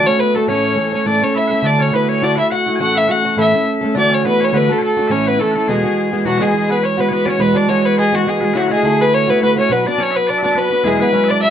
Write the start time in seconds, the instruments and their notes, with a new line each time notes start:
0.04 steel-string acoustic guitar A3 D4 F#4, bouzouki C#4, bagpipes C#5, fiddle C#5
0.19 bouzouki B3, fiddle B4, bagpipes B4
0.34 bouzouki A3, steel-string acoustic guitar A3 D4 F#4, bagpipes A4, fiddle A4
0.47 steel-string acoustic guitar A2 E3 A3 C#4 A4, bouzouki C#4, bagpipes C#5, fiddle C#5
0.76 steel-string acoustic guitar E3 A3 C#4 A4
0.92 steel-string acoustic guitar A3 C#4 A4, bouzouki C#4, fiddle C#5
1.05 steel-string acoustic guitar A2 E3 A3 C#4 A4, bouzouki D4, bagpipes D5, fiddle D5
1.21 steel-string acoustic guitar A3 C#4 A4, bouzouki C#4, bagpipes C#5, fiddle C#5
1.35 bouzouki E4, bagpipes E5, fiddle E5
1.48 steel-string acoustic guitar C#4 A4, bagpipes E5 F#5
1.53 steel-string acoustic guitar A3
1.63 steel-string acoustic guitar D3 A3 E4 F#4, bouzouki D4, bagpipes D5
1.67 fiddle D5
1.79 bouzouki C#4, bagpipes C#5, fiddle C#5
1.92 steel-string acoustic guitar D3 A3 E4 F#4, bouzouki B3, bagpipes B4, fiddle B4
2.09 bouzouki C#4, bagpipes C#5, fiddle C#5
2.22 steel-string acoustic guitar D3 A3 E4 F#4, bouzouki D4, bagpipes D5, fiddle D5
2.36 bouzouki E4, bagpipes E5 F#5, fiddle E5
2.40 steel-string acoustic guitar A3 E4
2.51 bouzouki F#4, bagpipes F#5, fiddle F#5
2.66 steel-string acoustic guitar A3 E4 F#4
2.76 steel-string acoustic guitar A2 E3, bagpipes G#5
2.80 steel-string acoustic guitar A3 C#4 A4, bouzouki F#4, bagpipes F#5, fiddle F#5
2.95 bouzouki E4, bagpipes E5, fiddle E5
3.08 steel-string acoustic guitar E3 A3 C#4 A4, bouzouki F#4, bagpipes F#5, fiddle F#5
3.25 bouzouki F#4
3.37 steel-string acoustic guitar A2 E3 A3 C#4 A4, bouzouki E4, bagpipes E5
3.41 fiddle E5
3.52 steel-string acoustic guitar A3 C#4 A4
3.81 steel-string acoustic guitar A3 C#4 A4
3.95 steel-string acoustic guitar D3 E3 A3 D4 F#4, bouzouki D4, bagpipes D5, fiddle D5
4.10 bouzouki C#4, bagpipes C#5
4.14 fiddle C#5
4.24 steel-string acoustic guitar E3 A3 D4 F#4, bouzouki B3, bagpipes B4, fiddle B4
4.40 bouzouki C#4, bagpipes C#5
4.44 fiddle C#5
4.52 steel-string acoustic guitar D3 E3 A3 D4 F#4, bouzouki B3, bagpipes B4
4.57 fiddle B4
4.68 bouzouki A3, steel-string acoustic guitar A3 D4 F#4, fiddle A4
4.78 bouzouki A3, bagpipes C#5
4.83 bagpipes A4, fiddle A4
4.97 steel-string acoustic guitar A3 D4 F#4
5.08 steel-string acoustic guitar A2 E3 A3 C#4, bouzouki C#4, bagpipes C#5 E5, fiddle C#5
5.12 steel-string acoustic guitar E4
5.27 bouzouki B3, bagpipes B4, fiddle B4
5.38 steel-string acoustic guitar E3 A3 C#4 E4, bouzouki A3, bagpipes A4, fiddle A4
5.52 bouzouki A3, steel-string acoustic guitar E4, bagpipes A4 B4
5.57 steel-string acoustic guitar A3 C#4, fiddle A4
5.67 steel-string acoustic guitar E2 B2 E3 G#3 B3 F#4, bouzouki G#3, bagpipes G#4, fiddle G#4
5.83 steel-string acoustic guitar E3 G#3 B3 F#4
6.11 steel-string acoustic guitar E3 G#3 B3 F#4
6.25 steel-string acoustic guitar E2 B2 E3 G#3 B3 F#4, bouzouki F#3, bagpipes F#4, fiddle F#4
6.38 bouzouki G#3, steel-string acoustic guitar G#3 B3 F#4, bagpipes G#4 B4
6.42 steel-string acoustic guitar E3, fiddle G#4
6.53 steel-string acoustic guitar E3 B3 F#4
6.69 bouzouki B3, bagpipes B4, fiddle B4
6.82 bouzouki C#4, bagpipes C#5, fiddle C#5
6.97 steel-string acoustic guitar E3 G#3 B3 F#4, bouzouki B3, fiddle B4, bagpipes B4
7.09 steel-string acoustic guitar E3 G#3 B3, bouzouki B3, bagpipes C#5
7.13 steel-string acoustic guitar F#4, bagpipes B4, fiddle B4
7.25 steel-string acoustic guitar E3 G#3 B3 F#4, bouzouki C#4, bagpipes C#5, fiddle D5
7.30 fiddle C#5
7.38 steel-string acoustic guitar E2 B2 E3 G#3 B3 F#4, bouzouki B3, bagpipes B4, fiddle B4
7.54 steel-string acoustic guitar E3 G#3 B3 F#4, bouzouki D4, bagpipes D5, fiddle D5
7.67 steel-string acoustic guitar E3 G#3 B3 F#4, bouzouki C#4, fiddle C#5, bagpipes C#5
7.85 bouzouki B3, fiddle B4
7.98 bouzouki G#3, bagpipes G#4, fiddle G#4
8.12 steel-string acoustic guitar E3 G#3 B3 F#4, bagpipes F#4, fiddle F#4
8.25 steel-string acoustic guitar E3 G#3 B3 F#4, bouzouki G#3, bagpipes G#4, fiddle G#4
8.41 steel-string acoustic guitar E3 G#3 B3 F#4, bagpipes G#4 B4
8.53 steel-string acoustic guitar D3 A3 E4 F#4, bouzouki F#3, bagpipes F#4 B4
8.57 fiddle F#4
8.68 bouzouki G#3, steel-string acoustic guitar E4 F#4, bagpipes G#4 B4
8.73 steel-string acoustic guitar A3, fiddle G#4
8.83 steel-string acoustic guitar D3 A3 E4 F#4, bouzouki A3
9.01 bouzouki B3, bagpipes B4, fiddle B4
9.14 bouzouki C#4, bagpipes C#5, fiddle C#5
9.28 steel-string acoustic guitar A3 E4 F#4, bouzouki B3, fiddle B4
9.41 steel-string acoustic guitar D3 A3 E4 F#4, bouzouki B3, fiddle B4, bagpipes B4
9.56 steel-string acoustic guitar A3 E4 F#4, bouzouki C#4, bagpipes C#5, fiddle C#5
9.70 steel-string acoustic guitar B2 F#3 B3 D4 F#4, bouzouki B3, bagpipes B4, fiddle B4
9.85 steel-string acoustic guitar B3 D4 F#4, bouzouki D4, bagpipes D5, fiddle D5
9.98 steel-string acoustic guitar F#3 B3 D4 F#4, bouzouki C#4, bagpipes C#5
10.03 fiddle C#5
10.11 bagpipes B4 E5
10.16 bouzouki B3, fiddle B4
10.27 bouzouki D4, bagpipes D5, fiddle D5
10.38 bagpipes D5 E5
10.43 steel-string acoustic guitar B3 D4 F#4, bouzouki D4, fiddle D5
10.52 steel-string acoustic guitar F#3, bagpipes B4 E5
10.56 steel-string acoustic guitar B3 D4 F#4, bouzouki B3, fiddle B4
10.70 steel-string acoustic guitar B3 D4 F#4
10.84 steel-string acoustic guitar E2 B2 F#3 G#3 B3 E4, bouzouki G#3, bagpipes G#4, fiddle G#4
10.99 steel-string acoustic guitar F#3 G#3 B3 E4, bouzouki B3, bagpipes B4, fiddle B4
11.12 steel-string acoustic guitar F#3 G#3 B3 E4, bouzouki C#4
11.24 bagpipes E5
11.28 bouzouki D4, bagpipes D5, fiddle D5
11.41 bouzouki E4, bagpipes E5, fiddle E5